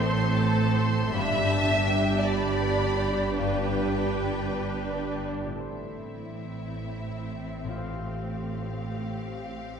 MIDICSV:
0, 0, Header, 1, 7, 480
1, 0, Start_track
1, 0, Tempo, 753769
1, 724, Time_signature, 6, 3, 24, 8
1, 3599, Tempo, 719424
1, 6365, End_track
2, 0, Start_track
2, 0, Title_t, "Violin section"
2, 0, Program_c, 0, 48
2, 0, Note_on_c, 0, 84, 72
2, 228, Note_off_c, 0, 84, 0
2, 241, Note_on_c, 0, 81, 68
2, 474, Note_on_c, 0, 84, 66
2, 483, Note_off_c, 0, 81, 0
2, 721, Note_on_c, 0, 83, 68
2, 722, Note_off_c, 0, 84, 0
2, 955, Note_on_c, 0, 81, 62
2, 959, Note_off_c, 0, 83, 0
2, 1186, Note_on_c, 0, 79, 59
2, 1190, Note_off_c, 0, 81, 0
2, 1423, Note_off_c, 0, 79, 0
2, 1425, Note_on_c, 0, 83, 70
2, 2150, Note_off_c, 0, 83, 0
2, 2152, Note_on_c, 0, 79, 58
2, 3224, Note_off_c, 0, 79, 0
2, 3607, Note_on_c, 0, 76, 43
2, 5026, Note_off_c, 0, 76, 0
2, 5049, Note_on_c, 0, 77, 53
2, 6365, Note_off_c, 0, 77, 0
2, 6365, End_track
3, 0, Start_track
3, 0, Title_t, "Violin section"
3, 0, Program_c, 1, 48
3, 0, Note_on_c, 1, 69, 83
3, 722, Note_off_c, 1, 69, 0
3, 723, Note_on_c, 1, 76, 101
3, 1412, Note_off_c, 1, 76, 0
3, 1421, Note_on_c, 1, 74, 78
3, 2144, Note_on_c, 1, 71, 66
3, 2148, Note_off_c, 1, 74, 0
3, 3338, Note_off_c, 1, 71, 0
3, 3599, Note_on_c, 1, 64, 38
3, 5022, Note_off_c, 1, 64, 0
3, 5043, Note_on_c, 1, 67, 44
3, 6365, Note_off_c, 1, 67, 0
3, 6365, End_track
4, 0, Start_track
4, 0, Title_t, "Harp"
4, 0, Program_c, 2, 46
4, 0, Note_on_c, 2, 45, 61
4, 0, Note_on_c, 2, 60, 47
4, 0, Note_on_c, 2, 69, 46
4, 0, Note_on_c, 2, 72, 50
4, 230, Note_off_c, 2, 72, 0
4, 237, Note_on_c, 2, 72, 52
4, 720, Note_on_c, 2, 43, 61
4, 743, Note_off_c, 2, 45, 0
4, 744, Note_off_c, 2, 60, 0
4, 745, Note_off_c, 2, 72, 0
4, 746, Note_off_c, 2, 69, 0
4, 964, Note_on_c, 2, 59, 45
4, 1194, Note_on_c, 2, 71, 46
4, 1425, Note_on_c, 2, 74, 43
4, 1657, Note_off_c, 2, 71, 0
4, 1665, Note_on_c, 2, 71, 45
4, 1903, Note_off_c, 2, 74, 0
4, 1910, Note_on_c, 2, 74, 39
4, 2147, Note_off_c, 2, 43, 0
4, 2155, Note_on_c, 2, 43, 54
4, 2387, Note_off_c, 2, 59, 0
4, 2395, Note_on_c, 2, 59, 41
4, 2632, Note_off_c, 2, 71, 0
4, 2640, Note_on_c, 2, 71, 41
4, 2873, Note_off_c, 2, 74, 0
4, 2881, Note_on_c, 2, 74, 44
4, 3113, Note_off_c, 2, 71, 0
4, 3121, Note_on_c, 2, 71, 44
4, 3356, Note_off_c, 2, 74, 0
4, 3363, Note_on_c, 2, 74, 41
4, 3477, Note_on_c, 2, 45, 32
4, 3504, Note_on_c, 2, 64, 28
4, 3536, Note_on_c, 2, 69, 27
4, 3565, Note_on_c, 2, 72, 27
4, 3618, Note_off_c, 2, 71, 0
4, 3619, Note_off_c, 2, 59, 0
4, 3619, Note_off_c, 2, 74, 0
4, 3622, Note_off_c, 2, 43, 0
4, 4917, Note_off_c, 2, 45, 0
4, 4925, Note_on_c, 2, 45, 36
4, 4955, Note_on_c, 2, 65, 33
4, 4987, Note_on_c, 2, 67, 32
4, 5010, Note_off_c, 2, 72, 0
4, 5018, Note_off_c, 2, 64, 0
4, 5018, Note_on_c, 2, 72, 33
4, 6135, Note_off_c, 2, 69, 0
4, 6365, Note_off_c, 2, 45, 0
4, 6365, Note_off_c, 2, 65, 0
4, 6365, Note_off_c, 2, 67, 0
4, 6365, Note_off_c, 2, 72, 0
4, 6365, End_track
5, 0, Start_track
5, 0, Title_t, "Viola section"
5, 0, Program_c, 3, 48
5, 0, Note_on_c, 3, 60, 61
5, 0, Note_on_c, 3, 72, 60
5, 700, Note_off_c, 3, 72, 0
5, 726, Note_off_c, 3, 60, 0
5, 728, Note_on_c, 3, 62, 58
5, 729, Note_on_c, 3, 67, 60
5, 3449, Note_off_c, 3, 62, 0
5, 3475, Note_off_c, 3, 67, 0
5, 3598, Note_on_c, 3, 60, 40
5, 6365, Note_off_c, 3, 60, 0
5, 6365, End_track
6, 0, Start_track
6, 0, Title_t, "Cello section"
6, 0, Program_c, 4, 48
6, 0, Note_on_c, 4, 45, 69
6, 699, Note_off_c, 4, 45, 0
6, 724, Note_on_c, 4, 43, 63
6, 3447, Note_off_c, 4, 43, 0
6, 3601, Note_on_c, 4, 45, 38
6, 6365, Note_off_c, 4, 45, 0
6, 6365, End_track
7, 0, Start_track
7, 0, Title_t, "Double bass section"
7, 0, Program_c, 5, 48
7, 0, Note_on_c, 5, 33, 65
7, 699, Note_off_c, 5, 33, 0
7, 726, Note_on_c, 5, 31, 65
7, 3448, Note_off_c, 5, 31, 0
7, 3598, Note_on_c, 5, 33, 37
7, 6365, Note_off_c, 5, 33, 0
7, 6365, End_track
0, 0, End_of_file